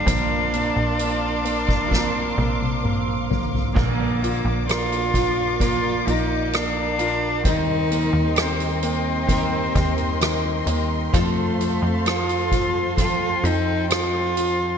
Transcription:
0.00 2.80 D4 medium
0.00 3.71 F5 medium
0.06 0.71 A#1 loud
0.06 0.52 A#2 medium
0.06 0.52 D3 medium
0.06 0.52 F3 medium
0.06 0.52 A#3 medium
0.06 0.52 C4 medium
0.06 0.52 D4 medium
0.06 3.72 A#4 medium
0.06 0.51 A#4 medium
0.06 3.72 C6 medium
0.06 3.72 D6 medium
0.06 kick medium
0.06 closed hi-hat medium
0.52 1.88 F3 soft
0.52 0.97 A#3 soft
0.52 1.90 C4 soft
0.52 1.93 D4 soft
0.52 1.94 A#4 soft
0.52 closed hi-hat medium
0.76 2.33 A#1 medium
0.99 1.43 A#3 soft
0.99 closed hi-hat medium
1.45 1.90 A#3 soft
1.45 closed hi-hat medium
1.69 kick medium
1.88 3.75 F3 medium
1.88 2.36 A#3 soft
1.88 3.75 C4 medium
1.88 kick medium
1.93 3.76 D4 medium
1.93 3.76 A#4 medium
1.93 snare soft
2.38 3.32 A#1 loud
2.38 2.82 A#3 soft
2.38 high tom medium
2.62 high tom soft
2.84 3.29 A#3 soft
2.84 mid tom medium
3.30 3.72 G#1 medium
3.30 3.74 A#3 soft
3.30 floor tom medium
3.55 floor tom medium
3.74 4.41 A#1 loud
3.74 4.67 A#2 medium
3.74 4.67 D3 medium
3.74 4.66 F3 medium
3.74 4.68 A#3 medium
3.74 4.64 A#3 medium
3.74 4.68 A#3 medium
3.74 4.68 D4 medium
3.74 11.10 A#4 medium
3.74 4.69 A#4 medium
3.74 7.41 D5 medium
3.74 7.41 F5 medium
3.74 7.41 D6 medium
3.74 kick medium
3.74 crash medium
4.23 5.13 F4 soft
4.23 closed hi-hat medium
4.45 6.02 A#1 medium
4.67 5.59 F3 soft
4.67 5.61 A#3 soft
4.67 5.59 A#3 soft
4.67 5.61 D4 medium
4.67 5.57 F4 medium
4.67 5.61 A#4 soft
4.67 cross-stick medium
4.67 closed hi-hat medium
4.92 closed hi-hat soft
5.14 6.06 F4 soft
5.14 kick medium
5.14 closed hi-hat medium
5.60 6.98 A#2 medium
5.60 6.99 F3 medium
5.60 6.52 A#3 medium
5.60 7.00 A#3 medium
5.60 6.05 F4 medium
5.60 6.98 A#4 medium
5.60 kick medium
5.60 closed hi-hat medium
6.07 7.46 A#1 medium
6.07 6.58 D#4 medium
6.07 6.97 F4 soft
6.07 closed hi-hat soft
6.53 7.42 A#3 soft
6.53 7.47 D4 medium
6.53 cross-stick medium
6.53 closed hi-hat medium
6.99 7.44 F3 soft
6.99 7.45 A#3 soft
6.99 7.45 D4 soft
6.99 7.43 F4 soft
6.99 7.45 A#4 soft
6.99 closed hi-hat medium
7.43 8.10 D#2 loud
7.43 9.26 D#3 medium
7.43 8.36 D#3 medium
7.43 9.28 G3 medium
7.43 9.30 C4 medium
7.43 9.30 G4 medium
7.43 11.11 D#5 medium
7.43 11.11 G5 medium
7.43 14.78 C6 medium
7.43 kick medium
7.43 closed hi-hat medium
7.48 8.43 D#4 medium
7.48 9.31 A#4 medium
7.91 8.82 A#3 soft
7.91 closed hi-hat medium
8.13 9.71 D#2 medium
8.36 9.27 D#3 medium
8.36 cross-stick medium
8.36 closed hi-hat medium
8.42 10.70 C4 medium
8.60 closed hi-hat soft
8.83 9.73 A#3 soft
8.83 closed hi-hat medium
9.27 11.13 D#3 medium
9.27 10.19 D#3 soft
9.27 11.13 G3 medium
9.27 11.14 C4 medium
9.27 kick medium
9.27 closed hi-hat medium
9.32 11.14 G4 medium
9.32 11.15 A#4 medium
9.75 10.64 D#2 medium
9.75 10.66 A#3 soft
9.75 kick medium
9.75 closed hi-hat soft
9.98 closed hi-hat soft
10.21 11.11 D#3 soft
10.21 cross-stick medium
10.21 closed hi-hat medium
10.67 11.10 D#2 medium
10.67 11.12 A#3 soft
10.67 closed hi-hat medium
11.13 11.79 F2 loud
11.13 12.06 F3 medium
11.13 11.58 F3 medium
11.13 12.08 A3 medium
11.13 12.06 C4 medium
11.13 12.08 F4 medium
11.13 14.78 A4 medium
11.13 12.07 A4 medium
11.13 14.78 C5 medium
11.13 12.97 F5 medium
11.13 kick loud
11.13 closed hi-hat medium
11.59 12.04 F3 soft
11.59 closed hi-hat medium
11.82 13.40 F2 medium
12.05 12.49 F3 soft
12.05 12.97 F3 soft
12.05 12.98 C4 medium
12.05 12.98 F4 medium
12.05 13.00 F4 medium
12.05 13.00 A4 medium
12.05 cross-stick medium
12.05 closed hi-hat medium
12.29 closed hi-hat soft
12.51 12.97 F3 medium
12.51 kick medium
12.51 closed hi-hat medium
12.97 14.78 F3 medium
12.97 13.43 F3 soft
12.97 14.78 C4 medium
12.97 14.78 F4 medium
12.97 13.47 F4 medium
12.97 14.78 G5 medium
12.97 kick medium
12.97 closed hi-hat medium
13.02 14.78 A4 medium
13.44 14.78 F2 loud
13.44 13.88 F3 soft
13.44 13.91 D#4 medium
13.44 closed hi-hat medium
13.90 14.35 F3 soft
13.90 14.78 F4 medium
13.90 cross-stick medium
13.90 closed hi-hat medium
14.36 14.78 F3 soft
14.36 closed hi-hat medium

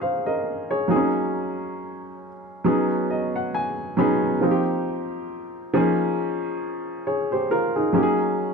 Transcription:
0.00 0.10 F3 medium
0.00 0.10 A#3 medium
0.00 0.11 C#4 medium
0.00 0.11 D#4 medium
0.00 0.71 G#4 medium
0.00 0.25 C5 soft
0.00 0.25 F5 medium
0.26 0.68 A#4 soft
0.26 0.68 D#5 medium
0.71 0.90 G#4 soft
0.71 1.12 C#5 medium
0.88 2.27 F#3 medium
0.88 2.27 A#3 medium
0.88 0.96 C4 soft
0.88 2.28 D#4 medium
0.88 2.28 G#4 medium
0.96 2.31 C#4 medium
2.64 3.73 F#3 medium
2.64 3.74 B3 medium
2.64 3.74 C#4 medium
2.64 3.74 D#4 medium
2.64 3.75 G#4 medium
3.10 3.33 D#5 medium
3.36 3.53 F#5 medium
3.54 3.95 G#5 medium
3.97 4.33 F#3 medium
3.97 4.33 B3 medium
3.97 4.34 C#4 medium
3.97 4.34 D#4 medium
3.97 4.35 G#4 medium
3.97 4.39 B5 medium
4.41 5.72 F3 medium
4.41 5.73 A#3 medium
4.41 5.75 C4 medium
4.41 5.74 D#4 medium
4.41 4.50 F4 medium
4.51 5.79 G4 medium
5.74 7.16 F3 medium
5.74 7.17 A#3 medium
5.74 7.17 C#4 medium
5.74 7.07 D#4 medium
5.74 7.06 G#4 medium
7.07 7.31 G#4 soft
7.07 7.30 C#5 medium
7.32 7.50 G4 soft
7.32 7.50 C5 medium
7.51 7.75 F4 medium
7.51 7.75 A#4 medium
7.76 7.94 D#4 medium
7.76 8.01 G#4 medium
7.93 8.54 F#3 medium
7.93 8.54 A#3 medium
7.93 8.54 C#4 medium
7.93 8.54 D#4 medium
7.93 8.03 G4 medium
8.03 8.54 G#4 medium

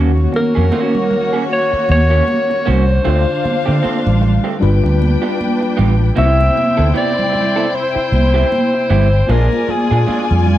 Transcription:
0.00 0.26 D#2 medium
0.00 3.00 D#3 medium
0.00 0.11 A#3 medium
0.00 3.02 A#3 medium
0.00 0.11 C#4 medium
0.00 3.02 C#4 medium
0.00 3.01 D#4 soft
0.00 0.11 F#4 medium
0.00 3.02 F#4 medium
0.00 3.02 C#5 medium
0.17 muted conga soft
0.32 1.47 A#4 medium
0.32 muted clean electric guitar stroke soft
0.32 high conga medium
0.55 0.70 F2 medium
0.55 0.65 A#3 soft
0.55 0.65 C#4 soft
0.55 0.65 G#4 medium
0.71 0.95 A#3 medium
0.71 0.95 C#4 medium
0.71 0.95 F#4 medium
0.71 muted conga soft
0.71 high conga soft
0.95 low conga medium
1.11 muted clean electric guitar stroke soft
1.11 low conga medium
1.33 1.43 A#3 soft
1.33 1.43 C#4 soft
1.33 1.43 G#4 soft
1.49 1.88 C#5 medium
1.49 muted clean electric guitar stroke soft
1.72 muted clean electric guitar stroke soft
1.72 muted fingered electric bass stroke soft
1.89 2.20 D#2 medium
1.89 2.70 C#5 loud
1.89 high conga medium
2.10 2.24 A#3 medium
2.10 2.23 C#4 medium
2.10 2.23 F#4 medium
2.27 muted clean electric guitar stroke soft
2.27 muted conga soft
2.27 high conga medium
2.50 muted clean electric guitar stroke soft
2.50 muted conga soft
2.66 2.98 C2 medium
2.66 2.83 A#3 medium
2.66 2.83 C#4 medium
2.66 2.83 F#4 medium
2.66 4.23 C5 medium
2.66 low conga medium
3.04 3.24 D2 medium
3.04 4.58 D3 soft
3.04 3.22 A3 medium
3.04 3.22 C4 medium
3.04 4.58 D4 soft
3.04 4.59 D4 medium
3.04 3.22 F4 medium
3.04 4.59 F4 soft
3.04 4.59 C5 medium
3.04 4.59 F5 medium
3.04 muted conga soft
3.44 muted clean electric guitar stroke soft
3.44 muted fingered electric bass stroke soft
3.44 high conga medium
3.66 3.81 D3 medium
3.66 3.76 A3 soft
3.66 3.76 C4 soft
3.66 3.76 G4 medium
3.83 4.00 A3 medium
3.83 4.00 C4 medium
3.83 4.00 F4 medium
3.83 muted fingered electric bass stroke soft
3.83 high conga soft
4.07 4.37 A1 medium
4.07 muted conga soft
4.07 low conga medium
4.21 muted clean electric guitar stroke soft
4.21 low conga medium
4.44 4.54 A3 soft
4.44 4.54 C4 soft
4.44 4.54 G4 soft
4.60 4.80 G1 medium
4.60 6.13 G3 medium
4.60 6.14 D4 medium
4.60 6.15 F4 medium
4.60 6.14 B4 medium
4.60 6.15 B4 medium
4.60 6.14 G5 medium
4.60 muted clean electric guitar stroke soft
4.60 muted conga soft
4.84 5.15 D2 medium
4.84 muted clean electric guitar stroke soft
4.84 muted conga soft
5.02 high conga medium
5.22 5.35 B3 medium
5.22 5.35 F4 medium
5.22 5.34 G4 medium
5.38 muted clean electric guitar stroke soft
5.38 muted conga soft
5.38 high conga medium
5.60 muted clean electric guitar stroke soft
5.60 muted conga soft
5.77 6.10 A1 medium
5.77 5.94 B3 medium
5.77 5.94 F4 medium
5.77 5.95 G4 medium
5.77 low conga medium
5.99 muted clean electric guitar stroke soft
6.15 6.49 C2 medium
6.15 9.24 C3 medium
6.15 6.40 B3 medium
6.15 9.25 C4 medium
6.15 6.40 E4 medium
6.15 9.25 E4 medium
6.15 9.25 E4 soft
6.15 6.40 G4 medium
6.15 9.25 C5 medium
6.15 9.26 C5 medium
6.15 6.92 E5 loud
6.15 9.25 G5 medium
6.15 muted conga soft
6.41 muted conga soft
6.55 muted clean electric guitar stroke soft
6.55 high conga medium
6.77 6.92 D2 medium
6.77 6.88 B3 soft
6.77 6.88 E4 medium
6.77 6.87 A4 medium
6.94 7.11 B3 medium
6.94 7.11 E4 medium
6.94 7.12 G4 medium
6.94 7.76 D5 loud
6.94 high conga soft
7.19 low conga medium
7.32 muted clean electric guitar stroke soft
7.32 low conga medium
7.56 7.66 B3 soft
7.56 7.66 E4 soft
7.56 7.66 A4 medium
7.72 9.32 C5 medium
7.72 muted clean electric guitar stroke soft
7.95 muted clean electric guitar stroke soft
7.95 muted fingered electric bass stroke soft
8.12 8.43 C2 medium
8.12 high conga medium
8.34 8.47 B3 soft
8.34 8.47 E4 medium
8.34 8.46 G4 medium
8.51 muted clean electric guitar stroke soft
8.51 muted conga soft
8.51 high conga medium
8.73 muted clean electric guitar stroke soft
8.90 9.21 G1 medium
8.90 9.07 B3 medium
8.90 9.07 E4 medium
8.90 9.07 G4 medium
8.90 low conga medium
9.13 muted clean electric guitar stroke soft
9.27 9.47 A#1 medium
9.27 9.46 G#3 medium
9.27 10.58 A#3 medium
9.27 9.46 D4 medium
9.27 10.58 F4 soft
9.27 10.58 F4 medium
9.27 9.46 F4 medium
9.27 10.58 G#4 soft
9.27 9.71 A#4 medium
9.27 10.58 D5 medium
9.27 10.58 G#5 loud
9.27 muted conga soft
9.53 muted conga soft
9.68 10.47 G#4 medium
9.68 muted clean electric guitar stroke soft
9.68 muted fingered electric bass stroke soft
9.68 high conga medium
9.91 10.04 A#2 medium
9.91 10.01 G#3 soft
9.91 10.01 D4 soft
9.91 10.00 G#4 medium
10.07 10.24 G#3 medium
10.07 10.24 D4 medium
10.07 10.24 F4 medium
10.07 muted fingered electric bass stroke soft
10.07 muted conga soft
10.07 high conga soft
10.31 10.58 F2 medium
10.31 muted conga soft
10.31 low conga medium
10.46 muted clean electric guitar stroke soft
10.46 low conga medium

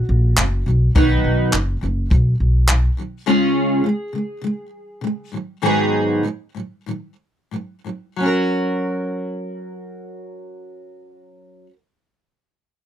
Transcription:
0.00 0.96 F#4 medium
0.09 0.32 A#1 medium
0.37 0.61 F#1 medium
0.37 0.61 F#3 medium
0.37 0.62 C#4 medium
0.37 clap loud
0.66 0.90 B1 medium
0.66 0.89 B2 soft
0.66 0.90 D#3 medium
0.66 0.91 F#3 medium
0.95 1.19 B1 medium
0.95 1.51 B2 medium
0.95 1.52 D#3 medium
0.95 1.53 F#3 medium
0.95 1.53 B3 medium
0.95 1.54 D#4 medium
0.95 1.54 B4 medium
0.95 kick loud
1.24 1.48 B1 medium
1.53 1.77 F#1 medium
1.53 1.76 B2 medium
1.53 1.76 D#3 medium
1.53 1.77 F#3 medium
1.53 clap medium
1.81 2.06 F#1 medium
1.81 2.05 B2 soft
1.81 2.05 D#3 medium
1.81 2.06 F#3 medium
2.10 2.35 B1 medium
2.10 2.34 B2 medium
2.10 2.34 D#3 medium
2.10 2.35 F#3 medium
2.10 kick medium
2.40 2.87 B1 medium
2.68 2.92 B2 medium
2.68 2.92 D#3 medium
2.68 2.93 F#3 medium
2.68 clap loud
2.97 3.20 B2 soft
2.97 3.21 D#3 soft
2.97 3.22 F#3 soft
3.26 3.83 C#3 medium
3.26 3.86 G#3 medium
3.26 3.85 C#4 medium
3.26 3.85 F4 medium
3.26 5.37 G#4 medium
3.84 4.07 C#3 medium
3.84 4.08 G#3 medium
4.13 4.37 C#3 soft
4.13 4.38 G#3 medium
4.42 4.66 C#3 medium
4.42 4.67 G#3 medium
5.01 5.26 C#3 medium
5.01 5.27 G#3 medium
5.32 5.56 G#2 soft
5.32 5.57 D#3 soft
5.32 5.57 F#3 soft
5.62 6.22 G#2 medium
5.62 6.23 D#3 medium
5.62 6.25 F#3 medium
5.62 6.24 B3 medium
5.62 6.24 D#4 medium
5.62 6.24 G#4 medium
6.23 6.48 G#2 soft
6.23 6.49 D#3 medium
6.23 6.50 F#3 medium
6.55 6.80 G#2 soft
6.55 6.81 D#3 soft
6.55 6.81 F#3 medium
6.86 7.12 G#2 medium
6.86 7.13 D#3 medium
6.86 7.13 F#3 medium
7.51 7.78 G#2 medium
7.51 7.78 D#3 soft
7.51 7.79 F#3 medium
7.84 8.11 G#2 soft
7.84 8.12 D#3 soft
7.84 8.13 F#3 soft
8.16 11.66 F#3 medium
8.16 11.70 C#4 medium
8.23 11.73 F#4 medium
8.23 11.76 A#4 medium

